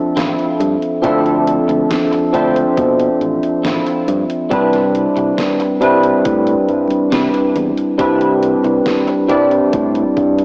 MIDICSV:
0, 0, Header, 1, 7, 480
1, 0, Start_track
1, 0, Key_signature, 0, "major"
1, 0, Tempo, 869565
1, 572, Time_signature, 4, 2, 24, 8
1, 5767, End_track
2, 0, Start_track
2, 0, Title_t, "Clean electric guitar"
2, 0, Program_c, 0, 27
2, 86, Note_on_c, 0, 60, 84
2, 92, Note_on_c, 0, 64, 73
2, 97, Note_on_c, 0, 65, 87
2, 329, Note_off_c, 0, 60, 0
2, 332, Note_off_c, 0, 64, 0
2, 334, Note_off_c, 0, 65, 0
2, 566, Note_on_c, 0, 60, 103
2, 572, Note_on_c, 0, 64, 98
2, 577, Note_on_c, 0, 65, 112
2, 749, Note_off_c, 0, 60, 0
2, 752, Note_off_c, 0, 64, 0
2, 755, Note_off_c, 0, 65, 0
2, 1287, Note_on_c, 0, 60, 82
2, 1292, Note_on_c, 0, 64, 75
2, 1297, Note_on_c, 0, 65, 91
2, 1410, Note_off_c, 0, 60, 0
2, 1412, Note_off_c, 0, 64, 0
2, 1415, Note_off_c, 0, 65, 0
2, 2006, Note_on_c, 0, 60, 83
2, 2011, Note_on_c, 0, 64, 77
2, 2017, Note_on_c, 0, 65, 90
2, 2249, Note_off_c, 0, 60, 0
2, 2251, Note_off_c, 0, 64, 0
2, 2254, Note_off_c, 0, 65, 0
2, 2486, Note_on_c, 0, 62, 105
2, 2492, Note_on_c, 0, 64, 99
2, 2497, Note_on_c, 0, 71, 117
2, 2669, Note_off_c, 0, 62, 0
2, 2672, Note_off_c, 0, 64, 0
2, 2675, Note_off_c, 0, 71, 0
2, 3207, Note_on_c, 0, 62, 86
2, 3212, Note_on_c, 0, 64, 77
2, 3217, Note_on_c, 0, 71, 92
2, 3330, Note_off_c, 0, 62, 0
2, 3332, Note_off_c, 0, 64, 0
2, 3335, Note_off_c, 0, 71, 0
2, 3927, Note_on_c, 0, 62, 85
2, 3932, Note_on_c, 0, 64, 77
2, 3939, Note_on_c, 0, 71, 92
2, 4170, Note_off_c, 0, 62, 0
2, 4172, Note_off_c, 0, 64, 0
2, 4175, Note_off_c, 0, 71, 0
2, 4409, Note_on_c, 0, 62, 111
2, 4414, Note_on_c, 0, 64, 98
2, 4419, Note_on_c, 0, 71, 116
2, 4590, Note_off_c, 0, 62, 0
2, 4593, Note_off_c, 0, 64, 0
2, 4595, Note_off_c, 0, 71, 0
2, 5126, Note_on_c, 0, 62, 83
2, 5132, Note_on_c, 0, 64, 74
2, 5137, Note_on_c, 0, 71, 90
2, 5249, Note_off_c, 0, 62, 0
2, 5252, Note_off_c, 0, 64, 0
2, 5255, Note_off_c, 0, 71, 0
2, 5767, End_track
3, 0, Start_track
3, 0, Title_t, "Tine electric piano"
3, 0, Program_c, 1, 4
3, 0, Control_c, 1, 64, 127
3, 0, Note_on_c, 1, 53, 78
3, 0, Note_on_c, 1, 60, 69
3, 0, Note_on_c, 1, 62, 69
3, 0, Note_on_c, 1, 69, 84
3, 0, Note_on_c, 1, 76, 74
3, 539, Note_off_c, 1, 53, 0
3, 541, Note_off_c, 1, 60, 0
3, 543, Note_off_c, 1, 62, 0
3, 545, Note_off_c, 1, 76, 0
3, 548, Note_off_c, 1, 69, 0
3, 563, Note_on_c, 1, 53, 74
3, 568, Note_on_c, 1, 60, 67
3, 571, Note_on_c, 1, 62, 63
3, 576, Note_on_c, 1, 76, 67
3, 581, Note_on_c, 1, 69, 80
3, 1259, Note_off_c, 1, 53, 0
3, 1261, Note_off_c, 1, 60, 0
3, 1263, Note_off_c, 1, 62, 0
3, 1265, Note_off_c, 1, 76, 0
3, 1268, Note_off_c, 1, 69, 0
3, 1284, Note_on_c, 1, 53, 68
3, 1288, Note_on_c, 1, 60, 64
3, 1292, Note_on_c, 1, 62, 67
3, 1296, Note_on_c, 1, 76, 66
3, 1301, Note_on_c, 1, 72, 75
3, 2459, Note_off_c, 1, 53, 0
3, 2462, Note_off_c, 1, 60, 0
3, 2463, Note_off_c, 1, 62, 0
3, 2465, Note_off_c, 1, 76, 0
3, 2468, Note_off_c, 1, 72, 0
3, 2482, Note_on_c, 1, 55, 73
3, 2487, Note_on_c, 1, 60, 70
3, 2491, Note_on_c, 1, 62, 70
3, 2495, Note_on_c, 1, 64, 66
3, 2499, Note_on_c, 1, 71, 81
3, 2500, Control_c, 1, 64, 0
3, 2596, Control_c, 1, 64, 127
3, 3178, Note_off_c, 1, 55, 0
3, 3181, Note_off_c, 1, 60, 0
3, 3183, Note_off_c, 1, 62, 0
3, 3185, Note_off_c, 1, 64, 0
3, 3187, Note_off_c, 1, 71, 0
3, 3204, Note_on_c, 1, 55, 78
3, 3208, Note_on_c, 1, 60, 75
3, 3212, Note_on_c, 1, 62, 73
3, 3217, Note_on_c, 1, 64, 73
3, 3221, Note_on_c, 1, 71, 89
3, 4379, Note_off_c, 1, 55, 0
3, 4381, Note_off_c, 1, 60, 0
3, 4384, Note_off_c, 1, 62, 0
3, 4386, Note_off_c, 1, 64, 0
3, 4388, Note_off_c, 1, 71, 0
3, 4404, Note_on_c, 1, 55, 72
3, 4408, Note_on_c, 1, 60, 66
3, 4413, Note_on_c, 1, 62, 67
3, 4417, Note_on_c, 1, 64, 66
3, 4421, Note_on_c, 1, 71, 79
3, 5099, Note_off_c, 1, 55, 0
3, 5101, Note_off_c, 1, 60, 0
3, 5104, Note_off_c, 1, 62, 0
3, 5106, Note_off_c, 1, 64, 0
3, 5108, Note_off_c, 1, 71, 0
3, 5125, Note_on_c, 1, 55, 73
3, 5129, Note_on_c, 1, 60, 64
3, 5133, Note_on_c, 1, 62, 63
3, 5138, Note_on_c, 1, 64, 63
3, 5141, Note_on_c, 1, 74, 77
3, 5767, Note_off_c, 1, 55, 0
3, 5767, Note_off_c, 1, 60, 0
3, 5767, Note_off_c, 1, 62, 0
3, 5767, Note_off_c, 1, 64, 0
3, 5767, Note_off_c, 1, 74, 0
3, 5767, End_track
4, 0, Start_track
4, 0, Title_t, "Fingered electric bass"
4, 0, Program_c, 2, 33
4, 90, Note_on_c, 2, 33, 84
4, 173, Note_off_c, 2, 33, 0
4, 331, Note_on_c, 2, 43, 94
4, 413, Note_off_c, 2, 43, 0
4, 572, Note_on_c, 2, 38, 94
4, 871, Note_off_c, 2, 38, 0
4, 930, Note_on_c, 2, 38, 84
4, 1013, Note_off_c, 2, 38, 0
4, 1291, Note_on_c, 2, 38, 85
4, 1455, Note_off_c, 2, 38, 0
4, 1531, Note_on_c, 2, 47, 91
4, 1695, Note_off_c, 2, 47, 0
4, 1771, Note_on_c, 2, 33, 76
4, 1889, Note_off_c, 2, 33, 0
4, 2012, Note_on_c, 2, 33, 85
4, 2094, Note_off_c, 2, 33, 0
4, 2252, Note_on_c, 2, 43, 92
4, 2334, Note_off_c, 2, 43, 0
4, 2491, Note_on_c, 2, 36, 96
4, 2790, Note_off_c, 2, 36, 0
4, 2852, Note_on_c, 2, 36, 88
4, 2933, Note_off_c, 2, 36, 0
4, 3212, Note_on_c, 2, 36, 86
4, 3375, Note_off_c, 2, 36, 0
4, 3451, Note_on_c, 2, 45, 94
4, 3615, Note_off_c, 2, 45, 0
4, 3692, Note_on_c, 2, 43, 80
4, 3810, Note_off_c, 2, 43, 0
4, 3932, Note_on_c, 2, 48, 84
4, 4014, Note_off_c, 2, 48, 0
4, 4173, Note_on_c, 2, 40, 93
4, 4254, Note_off_c, 2, 40, 0
4, 4412, Note_on_c, 2, 36, 94
4, 4710, Note_off_c, 2, 36, 0
4, 4772, Note_on_c, 2, 36, 86
4, 4854, Note_off_c, 2, 36, 0
4, 5132, Note_on_c, 2, 36, 86
4, 5295, Note_off_c, 2, 36, 0
4, 5372, Note_on_c, 2, 45, 93
4, 5535, Note_off_c, 2, 45, 0
4, 5612, Note_on_c, 2, 43, 76
4, 5767, Note_off_c, 2, 43, 0
4, 5767, End_track
5, 0, Start_track
5, 0, Title_t, "Muted clean electric guitar strokes"
5, 928, Note_on_c, 9, 29, 78
5, 983, Note_off_c, 9, 29, 0
5, 1049, Note_on_c, 9, 29, 31
5, 1105, Note_off_c, 9, 29, 0
5, 1167, Note_on_c, 9, 29, 106
5, 1222, Note_off_c, 9, 29, 0
5, 1527, Note_on_c, 9, 29, 31
5, 1583, Note_off_c, 9, 29, 0
5, 2847, Note_on_c, 9, 29, 80
5, 2902, Note_off_c, 9, 29, 0
5, 2966, Note_on_c, 9, 29, 32
5, 3021, Note_off_c, 9, 29, 0
5, 3086, Note_on_c, 9, 29, 104
5, 3141, Note_off_c, 9, 29, 0
5, 3447, Note_on_c, 9, 29, 32
5, 3502, Note_off_c, 9, 29, 0
5, 4767, Note_on_c, 9, 29, 82
5, 4823, Note_off_c, 9, 29, 0
5, 4888, Note_on_c, 9, 29, 32
5, 4943, Note_off_c, 9, 29, 0
5, 5007, Note_on_c, 9, 29, 101
5, 5062, Note_off_c, 9, 29, 0
5, 5367, Note_on_c, 9, 29, 31
5, 5423, Note_off_c, 9, 29, 0
5, 5767, End_track
6, 0, Start_track
6, 0, Title_t, "Muted fingered electric bass strokes"
6, 3813, Note_on_c, 9, 29, 43
6, 3869, Note_off_c, 9, 29, 0
6, 5767, End_track
7, 0, Start_track
7, 0, Title_t, "Drums"
7, 94, Note_on_c, 9, 38, 111
7, 94, Note_on_c, 9, 42, 87
7, 149, Note_off_c, 9, 38, 0
7, 149, Note_off_c, 9, 42, 0
7, 214, Note_on_c, 9, 42, 38
7, 270, Note_off_c, 9, 42, 0
7, 334, Note_on_c, 9, 42, 65
7, 389, Note_off_c, 9, 42, 0
7, 454, Note_on_c, 9, 42, 39
7, 509, Note_off_c, 9, 42, 0
7, 571, Note_on_c, 9, 36, 116
7, 574, Note_on_c, 9, 42, 91
7, 627, Note_off_c, 9, 36, 0
7, 629, Note_off_c, 9, 42, 0
7, 694, Note_on_c, 9, 42, 39
7, 749, Note_off_c, 9, 42, 0
7, 814, Note_on_c, 9, 42, 64
7, 869, Note_off_c, 9, 42, 0
7, 934, Note_on_c, 9, 42, 38
7, 989, Note_off_c, 9, 42, 0
7, 1053, Note_on_c, 9, 38, 118
7, 1053, Note_on_c, 9, 42, 90
7, 1108, Note_off_c, 9, 38, 0
7, 1108, Note_off_c, 9, 42, 0
7, 1174, Note_on_c, 9, 42, 40
7, 1229, Note_off_c, 9, 42, 0
7, 1291, Note_on_c, 9, 36, 62
7, 1294, Note_on_c, 9, 42, 62
7, 1346, Note_off_c, 9, 36, 0
7, 1349, Note_off_c, 9, 42, 0
7, 1414, Note_on_c, 9, 42, 40
7, 1469, Note_off_c, 9, 42, 0
7, 1531, Note_on_c, 9, 36, 119
7, 1533, Note_on_c, 9, 42, 91
7, 1586, Note_off_c, 9, 36, 0
7, 1588, Note_off_c, 9, 42, 0
7, 1654, Note_on_c, 9, 42, 37
7, 1709, Note_off_c, 9, 42, 0
7, 1773, Note_on_c, 9, 42, 35
7, 1828, Note_off_c, 9, 42, 0
7, 1894, Note_on_c, 9, 42, 39
7, 1949, Note_off_c, 9, 42, 0
7, 2013, Note_on_c, 9, 38, 115
7, 2013, Note_on_c, 9, 42, 89
7, 2068, Note_off_c, 9, 38, 0
7, 2068, Note_off_c, 9, 42, 0
7, 2133, Note_on_c, 9, 42, 38
7, 2189, Note_off_c, 9, 42, 0
7, 2252, Note_on_c, 9, 42, 69
7, 2308, Note_off_c, 9, 42, 0
7, 2372, Note_on_c, 9, 42, 40
7, 2427, Note_off_c, 9, 42, 0
7, 2491, Note_on_c, 9, 36, 120
7, 2491, Note_on_c, 9, 42, 91
7, 2546, Note_off_c, 9, 42, 0
7, 2547, Note_off_c, 9, 36, 0
7, 2611, Note_on_c, 9, 38, 36
7, 2611, Note_on_c, 9, 42, 38
7, 2667, Note_off_c, 9, 38, 0
7, 2667, Note_off_c, 9, 42, 0
7, 2731, Note_on_c, 9, 42, 63
7, 2786, Note_off_c, 9, 42, 0
7, 2851, Note_on_c, 9, 42, 37
7, 2907, Note_off_c, 9, 42, 0
7, 2970, Note_on_c, 9, 38, 120
7, 2970, Note_on_c, 9, 42, 89
7, 3026, Note_off_c, 9, 38, 0
7, 3026, Note_off_c, 9, 42, 0
7, 3090, Note_on_c, 9, 42, 37
7, 3146, Note_off_c, 9, 42, 0
7, 3211, Note_on_c, 9, 42, 64
7, 3266, Note_off_c, 9, 42, 0
7, 3330, Note_on_c, 9, 42, 39
7, 3386, Note_off_c, 9, 42, 0
7, 3450, Note_on_c, 9, 42, 90
7, 3451, Note_on_c, 9, 36, 120
7, 3505, Note_off_c, 9, 42, 0
7, 3507, Note_off_c, 9, 36, 0
7, 3570, Note_on_c, 9, 42, 37
7, 3625, Note_off_c, 9, 42, 0
7, 3691, Note_on_c, 9, 42, 35
7, 3746, Note_off_c, 9, 42, 0
7, 3812, Note_on_c, 9, 42, 39
7, 3867, Note_off_c, 9, 42, 0
7, 3931, Note_on_c, 9, 38, 119
7, 3931, Note_on_c, 9, 42, 90
7, 3987, Note_off_c, 9, 38, 0
7, 3987, Note_off_c, 9, 42, 0
7, 4052, Note_on_c, 9, 42, 37
7, 4107, Note_off_c, 9, 42, 0
7, 4171, Note_on_c, 9, 42, 64
7, 4226, Note_off_c, 9, 42, 0
7, 4292, Note_on_c, 9, 42, 38
7, 4347, Note_off_c, 9, 42, 0
7, 4412, Note_on_c, 9, 36, 120
7, 4412, Note_on_c, 9, 42, 90
7, 4467, Note_off_c, 9, 36, 0
7, 4467, Note_off_c, 9, 42, 0
7, 4532, Note_on_c, 9, 42, 36
7, 4587, Note_off_c, 9, 42, 0
7, 4651, Note_on_c, 9, 42, 61
7, 4707, Note_off_c, 9, 42, 0
7, 4771, Note_on_c, 9, 42, 37
7, 4826, Note_off_c, 9, 42, 0
7, 4890, Note_on_c, 9, 38, 114
7, 4890, Note_on_c, 9, 42, 86
7, 4945, Note_off_c, 9, 38, 0
7, 4945, Note_off_c, 9, 42, 0
7, 5010, Note_on_c, 9, 42, 37
7, 5065, Note_off_c, 9, 42, 0
7, 5131, Note_on_c, 9, 42, 57
7, 5132, Note_on_c, 9, 36, 64
7, 5186, Note_off_c, 9, 42, 0
7, 5187, Note_off_c, 9, 36, 0
7, 5251, Note_on_c, 9, 42, 38
7, 5306, Note_off_c, 9, 42, 0
7, 5371, Note_on_c, 9, 42, 84
7, 5372, Note_on_c, 9, 36, 120
7, 5426, Note_off_c, 9, 42, 0
7, 5427, Note_off_c, 9, 36, 0
7, 5492, Note_on_c, 9, 42, 36
7, 5547, Note_off_c, 9, 42, 0
7, 5612, Note_on_c, 9, 36, 60
7, 5612, Note_on_c, 9, 42, 33
7, 5667, Note_off_c, 9, 36, 0
7, 5667, Note_off_c, 9, 42, 0
7, 5732, Note_on_c, 9, 42, 36
7, 5767, Note_off_c, 9, 42, 0
7, 5767, End_track
0, 0, End_of_file